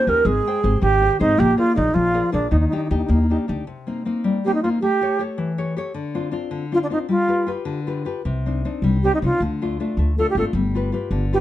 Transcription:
Already playing: C5
0.07 D#2 C#4 D#4 G4 A#4
0.25 G#1 G#3 G#4
0.47 G#4 C5 G5
0.63 G#1 G4 G#4 C5
0.82 G#1 D#3 G4
1.02 G4 G#4 C5
1.20 G#1 D#4 G4 G#4 C5
1.37 A#1 A#3 G4
1.57 F4 G#4 A#4 D5
1.75 A#1 D#4 G#4 A#4 D5
1.94 A#1 F3 F4
2.14 G#4 A#4 D5
2.32 A#1 D4 G#4 A#4 D5
2.51 D#2 D#3 D#4
2.60 D#4
2.68 D#4
2.72 D4 D#4 G4
2.84 D#4
2.90 D#2 D4 D#4 G4
2.97 D#4
3.04 D#4
3.08 D#2 A#3
3.13 D#4
3.22 D#4
3.29 D4 D#4 G4
3.48 D2 D4 D#4 G4
3.67 C3
3.87 A#3 C4 D#4
4.05 A#3 C4 D#4
4.24 G3
4.45 A#3 C4 D#4 G4
4.54 D#4
4.63 A#3 C4 D#4 F4
4.81 A3 G4
5.01 G4 A4 C#5
5.19 G4 A4 C#5
5.38 E3
5.58 G4 A4 C#5
5.77 G4 A4 C#5
5.94 D3
6.15 C4 D4 F4
6.31 C4 D4 F4
6.51 D3
6.72 C4 D4 F4
6.83 D4
6.90 C4 D4 D#4 F4
7.09 G3 F4
7.28 F4 G4 B4
7.47 F4 G4 B4
7.65 D3
7.87 F4 G4 B4
8.05 F4 G4 B4
8.25 C2 C3
8.46 C4 D4 D#4
8.65 C4 D4 D#4
8.82 C2 G3
9.03 C4 D4 D#4 G4
9.15 D#4
9.22 C2 C4 D4 D#4 F4
9.40 D2 D3
9.62 A3 D4 F4
9.80 A3 D4 F4
9.97 D2 A3
10.18 A3 D4 F4 A4
10.30 G4
10.35 G#1 A3 D4 F4 A4
10.53 G1 G3
10.75 F4 G4 B4
10.92 F4 G4 B4
11.11 G1 D3
11.33 F4 G4 B4

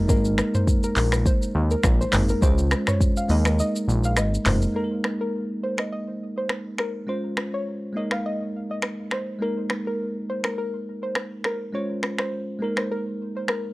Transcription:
Already playing: F1 G#3 A#3 D#4 A#4
0.08 G#1 G#3 A#3 D#4 A#4, kick, shaker
0.25 shaker
0.38 finger snap, cross-stick, shaker
0.55 C5, mid tom, shaker
0.67 kick, shaker
0.83 A#4, shaker
0.96 A#1 A#4, clap, open hi-hat, shaker
1.12 finger snap, cross-stick, shaker
1.26 C5, kick, shaker
1.42 shaker
1.55 D#2
1.71 A#4, shaker
1.83 A#1, finger snap, kick, cross-stick, shaker
2.01 C5, shaker
2.12 G#1 G#3 A#3 D#4 A#4, finger snap, cross-stick, clap, mid tom, open hi-hat, shaker
2.29 A#4, shaker
2.41 C#2 G#3 C#4 F4 C5, kick, shaker
2.58 shaker
2.71 finger snap, cross-stick, shaker
2.87 C#5, finger snap, cross-stick, mid tom, shaker
3.01 kick, shaker
3.17 F5, shaker
3.28 D#2 G#3 A#3 D#4 A#4 D#5, open hi-hat, shaker
3.45 finger snap, cross-stick, shaker
3.59 D#5, shaker
3.76 shaker
3.88 A#1, shaker
4.04 F5, shaker
4.17 G#1 D#5, finger snap, cross-stick, shaker
4.34 shaker
4.45 F1 G#3 A#3 D#4 A#4 C5, finger snap, cross-stick, clap, mid tom, open hi-hat, shaker
4.62 shaker
4.73 G#3 A#3 D#4 A#4
4.78 A4
4.84 A#4
5.04 finger snap, cross-stick
5.21 A#4
5.63 C5
5.78 D#5, finger snap, cross-stick
5.92 D#5
6.38 C5
6.49 finger snap, cross-stick
6.78 A#4, finger snap, cross-stick
7.07 G#3 C#4 F4 C5
7.37 finger snap, cross-stick
7.54 C#5
7.93 G#3 A#3 D#4
7.97 A#4 D#5
8.11 F5, finger snap, cross-stick
8.26 D#5
8.71 D#5
8.82 finger snap, cross-stick
9.11 C5, finger snap, cross-stick
9.39 G#3 A#3 D#4 A#4
9.44 A#4
9.70 finger snap, cross-stick
9.87 A#4
10.30 C5
10.44 A#4, finger snap, cross-stick
10.58 A#4
11.03 C5
11.15 finger snap, cross-stick
11.44 A#4, finger snap, cross-stick
11.73 G#3 C#4 F4 C5 C#5
12.03 finger snap, cross-stick
12.18 C5, finger snap, cross-stick
12.59 G#3 A#3 D#4 A#4
12.64 A#4
12.77 C5, finger snap, cross-stick
12.91 A#4
13.37 C5
13.48 A#4, finger snap, cross-stick

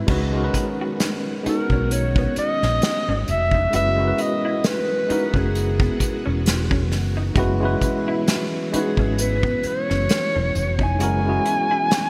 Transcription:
Already playing: C4 E4 B4
0.07 C#2 D#3 G#3 B3 C#4 D#4 F#4, kick, crash
0.11 B4
0.33 G#3 C#4 D#4 F#4
0.37 A#4
0.44 B4
0.54 muted clean electric guitar stroke, kick, closed hi-hat
0.81 F#4
1.00 muted clean electric guitar stroke, snare, closed hi-hat
1.43 G#3 C#4 D#4 F#4, muted fretless electric bass stroke, closed hi-hat
1.47 B3 A#4
1.70 B1 C#4, kick
1.89 C#4 C#5, closed hi-hat
2.16 B3, kick
2.36 D#5, muted fretless electric bass stroke, muted clean electric guitar stroke, closed hi-hat
2.62 A#1 C#4, snare
2.82 snare, closed hi-hat
3.08 G#1 C#4
3.28 F1 E5, muted clean electric guitar stroke, closed hi-hat
3.51 D#4, kick
3.71 F#1 E3 G#3 C#4 E4 F#4, closed hi-hat
3.75 B4 E5
3.96 G#3 C#4 E4 F#4
4.01 A#4
4.08 B4
4.18 D#5, muted clean electric guitar stroke, closed hi-hat
4.45 E4
4.64 B4, muted clean electric guitar stroke, snare, closed hi-hat
5.07 G#3 C#4 D#4 E4, muted fretless electric bass stroke, closed hi-hat
5.11 F#4 A#4
5.34 F#1 C#4, kick
5.38 G#4
5.55 closed hi-hat
5.80 B3, kick
6.00 muted clean electric guitar stroke, muted fretless electric bass stroke, kick, closed hi-hat
6.26 E1 C#4
6.46 snare, closed hi-hat
6.71 C#4, kick
6.91 F#1, muted clean electric guitar stroke, snare, open hi-hat
7.17 D#4
7.35 F#1 G#3 C#4 E4 F#4, kick, closed hi-hat
7.39 B4
7.60 G#3 C#4 E4 F#4
7.65 B4
7.81 muted clean electric guitar stroke, kick, closed hi-hat
8.08 E4
8.28 muted clean electric guitar stroke, snare, closed hi-hat
8.71 G#3 C#4 D#4 E4 F#4 G#4, muted fretless electric bass stroke, closed hi-hat
8.76 B4
8.97 G#1 C#4, kick
9.18 B4, closed hi-hat
9.43 B3, kick
9.63 C#5, muted clean electric guitar stroke, muted fretless electric bass stroke, closed hi-hat
9.90 F#1 C#4, snare
10.09 snare, closed hi-hat
10.36 E1 C#4
10.55 F1, muted clean electric guitar stroke, closed hi-hat
10.79 D#4, kick
10.83 G#5
10.99 F#1 G#3 C#4 E4 F#4, closed hi-hat
11.03 A#4
11.25 G#3 C#4 E4 F#4
11.29 G#4
11.45 muted clean electric guitar stroke, closed hi-hat
11.71 E4
11.91 muted clean electric guitar stroke, snare, closed hi-hat

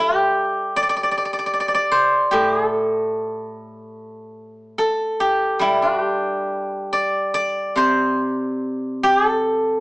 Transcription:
Already playing: G3 A4
0.00 G4
0.76 D5
0.83 D5
0.89 D5
0.96 D5
1.03 D5
1.11 D5
1.18 D5
1.25 D5
1.33 D5
1.39 D5
1.46 D5
1.53 D5
1.60 D5
1.68 D5
1.74 D5
1.92 C5
2.31 A2 G4
2.53 G#4
2.66 A4
4.78 A4
5.20 G4
5.59 G3 E4
5.82 D4
6.01 G4
6.93 D5
7.34 D5
7.76 C3 C5
9.03 G4
9.26 A4

